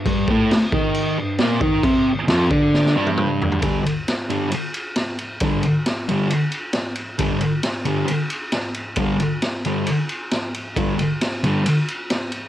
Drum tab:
CC |x---x---x---x---|x---x-----------|----------------|----------------|
RD |----------------|----------------|x-x-x-x-x-x-x-x-|x-x-x-x-x-x-x-x-|
SD |----o-------o---|----o---oo------|----o-------o---|----o-------o---|
T1 |----------------|-----------o----|----------------|----------------|
T2 |----------------|------------o---|----------------|----------------|
FT |----------------|--------------oo|----------------|----------------|
BD |o-o---o-------o-|o-----o---------|o---------------|o---------------|

CC |----------------|----------------|----------------|
RD |x-x-x-x-x-x-x-x-|x-x-x-x-x-x-x-x-|x-x-x-x-x-x-x-x-|
SD |----o-------o---|----o-------o---|----o-------o---|
T1 |----------------|----------------|----------------|
T2 |----------------|----------------|----------------|
FT |----------------|----------------|----------------|
BD |o---------------|o---------------|o---------------|